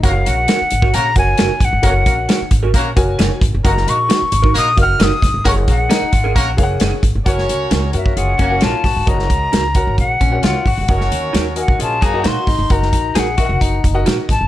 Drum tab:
HH |x-x-x-x-x-x-x-x-|x-x-x-x-x-x-x-x-|x-x-x-x-x-x-x-x-|x-x-x-x-x-x-x-x-|
SD |----o-------o---|----o-------o---|-o--o-------o-o-|----o-------o---|
BD |o------o--o---o-|o-o---o-o-o---o-|o------o--o---o-|o-o---o-o-o---o-|

HH |x-x-x-x-x-x-x-o-|x-x-x-x-x-x-x-o-|x-x-x-x-x-x-x-o-|x-x-x-x-x-x-x-x-|
SD |-o--o-------o-o-|-o--o-------o---|-o--o-------o-o-|-o--o-------o-o-|
BD |o------o--o---o-|o-o---o-o-o---o-|o------o--o---o-|o-o---o-o-o---o-|